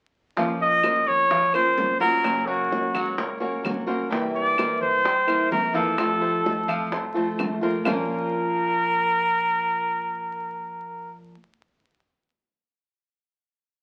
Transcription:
0.36 upright bass A#1, nylon-string guitar F3 A#3 C#4 F4 C5, grand piano F3 F4 F5, high bongo
0.60 trumpet D#5, high bongo
0.83 nylon-string guitar A#3 C#4 F4 C5, grand piano A#3 A#4 C5, high bongo, claves
1.06 upright bass F2, trumpet C#5, high bongo
1.30 grand piano F3 F4 F5, muted nylon-string guitar stroke, high bongo
1.53 grand piano A#3 A#4 C5, nylon-string guitar A#3 C#4 F4 C5, trumpet C5, claves
1.77 upright bass F#2, nylon-string guitar A#3 C#4 F4 C5, high bongo, low bongo
2.00 grand piano F#3 F#4 F#5, nylon-string guitar A#3 C#4 F4 C5, trumpet A#4, high bongo
2.23 nylon-string guitar C#3 F#3 A#3 C#4 F#4, high bongo, claves
2.47 grand piano A#3 A#4 C#5, trumpet F#4, high bongo
2.70 nylon-string guitar F#3 A#3 C#4 F#4, high bongo
2.94 upright bass C#2, grand piano F#3 F#4 F#5, high bongo, claves
3.18 grand piano A#3 A#4 C#5, muted nylon-string guitar stroke, high bongo
3.40 nylon-string guitar F#3 A#3 C#4 F#4, grand piano A#3 A#4 C#5
3.63 upright bass C2, nylon-string guitar F#3 A#3 C#4 F#4, high bongo, low bongo, claves
3.87 nylon-string guitar F#3 A#3 C#4 F#4, grand piano A#3 A#4 C5, high bongo
4.10 nylon-string guitar C3 E3 A#3 C4 E4, grand piano G3 G4 G5, high bongo
4.35 trumpet D5, high bongo
4.56 nylon-string guitar E3 A#3 C4 E4, grand piano A#3 A#4 C5, high bongo, claves
4.81 upright bass G2, trumpet C5, high bongo
5.04 grand piano G3 G4 G5, muted nylon-string guitar stroke, high bongo
5.27 nylon-string guitar E3 A#3 C4 E4, grand piano A#3 A#4 C5, claves
5.50 upright bass F2, nylon-string guitar E3 A#3 C4 E4, trumpet A#4, high bongo, low bongo
5.74 nylon-string guitar E3 A#3 C4 E4, grand piano F3 F4 F5, trumpet A4, high bongo
5.97 nylon-string guitar C3 F3 A3 C4 F4, high bongo, claves
6.21 grand piano A3 A4 C5, high bongo
6.44 nylon-string guitar F3 A3 C4 F4, high bongo
6.67 upright bass C2, grand piano F3 F4 F5, high bongo, claves
6.91 grand piano A3 A4 C5, muted nylon-string guitar stroke, high bongo
7.14 upright bass C2, nylon-string guitar F3 A3 C4 F4, grand piano A3 A4 C5
7.38 upright bass A#1, nylon-string guitar F3 A3 C4 F4, high bongo, low bongo, claves
7.61 nylon-string guitar F3 A3 C4 F4, grand piano A#3 A#4 C5, high bongo
7.84 upright bass A#1, nylon-string guitar A#2 F3 A#3 C#4 F4 C5, grand piano A#3 F4 A#4 C5 F5, trumpet A#4, low bongo, claves

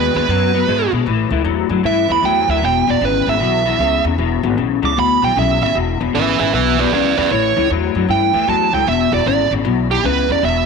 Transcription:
Already playing: upright bass D#2, clean electric guitar B2 G#3, lead electric guitar B4
0.15 upright bass D#2, clean electric guitar B2 G#3, lead electric guitar B4
0.28 upright bass F#2, clean electric guitar B2 F#3
0.54 clean electric guitar B2 F#3
0.67 upright bass G#2, clean electric guitar B2 G#3
0.92 upright bass B2, clean electric guitar B2 G#3
1.06 upright bass A1, clean electric guitar A2 E3
1.30 upright bass C#2, clean electric guitar A2 E3
1.44 upright bass E2, clean electric guitar A2 F#3
1.69 upright bass F#2, clean electric guitar A2 F#3
1.83 upright bass G2, clean electric guitar A2 E3, lead electric guitar E5
2.08 upright bass E2, clean electric guitar A2 E3, lead electric guitar B5
2.22 upright bass E2, clean electric guitar A2 F#3, lead electric guitar G5
2.48 upright bass D2, clean electric guitar A2 F#3, lead electric guitar E5
2.62 upright bass E1, clean electric guitar E2 B2, lead electric guitar G5
2.87 upright bass E1, clean electric guitar E2 B2, lead electric guitar D5
3.01 upright bass G#1, clean electric guitar E2 C#3, lead electric guitar B4
3.27 upright bass G#1, clean electric guitar E2 C#3, lead electric guitar E5
3.40 upright bass B1, clean electric guitar E2 B2
3.66 clean electric guitar E2 B2
3.79 upright bass C#2, clean electric guitar E2 C#3
4.04 clean electric guitar E2 C#3, upright bass E2
4.18 upright bass E1, clean electric guitar E2 B2
4.43 upright bass G#1, clean electric guitar E2 B2
4.57 upright bass B1, clean electric guitar E2 C#3
4.82 upright bass C#2, clean electric guitar E2 C#3, lead electric guitar D6
4.97 upright bass D2, clean electric guitar E2 B2, lead electric guitar B5
5.22 upright bass B1, clean electric guitar E2 B2, lead electric guitar G5
5.36 upright bass B1, clean electric guitar E2 C#3, lead electric guitar E5
5.61 upright bass G#1, clean electric guitar E2 C#3, lead electric guitar E5
5.74 upright bass E1, clean electric guitar E2 B2
6.00 upright bass E1, clean electric guitar E2 B2
6.15 upright bass G#1, clean electric guitar E2 C#3, lead electric guitar B4 E5
6.39 upright bass G#1, clean electric guitar E2 C#3, lead electric guitar B4 E5
6.53 upright bass B1, clean electric guitar E2 B2, lead electric guitar B4 E5
6.78 clean electric guitar E2 B2, lead electric guitar B4 D5
6.92 upright bass C#2, clean electric guitar E2 C#3, lead electric guitar B4 D5
7.17 upright bass E2, clean electric guitar E2 C#3, lead electric guitar B4 D5
7.31 upright bass A1, clean electric guitar A2 E3, lead electric guitar C#5
7.56 upright bass C#2, clean electric guitar A2 E3
7.70 upright bass E2, clean electric guitar A2 F#3
7.95 upright bass F#2, clean electric guitar A2 F#3
8.08 upright bass G2, clean electric guitar A2 E3, lead electric guitar G5
8.34 upright bass E2, clean electric guitar A2 E3
8.48 upright bass E2, clean electric guitar A2 F#3, lead electric guitar A5
8.73 upright bass C#2, clean electric guitar A2 F#3, lead electric guitar G5
8.86 upright bass E1, clean electric guitar E2 B2, lead electric guitar E5
9.12 upright bass E1, clean electric guitar E2 B2, lead electric guitar D5
9.26 upright bass G#1, clean electric guitar E2 C#3, lead electric guitar D5
9.51 upright bass G#1, clean electric guitar E2 C#3
9.64 upright bass B1, clean electric guitar E2 B2
9.90 clean electric guitar E2 B2, lead electric guitar G4
10.03 upright bass C#2, clean electric guitar E2 C#3, lead electric guitar B4
10.29 upright bass E2, clean electric guitar E2 C#3, lead electric guitar D5
10.42 upright bass E1, clean electric guitar E2 B2, lead electric guitar E5

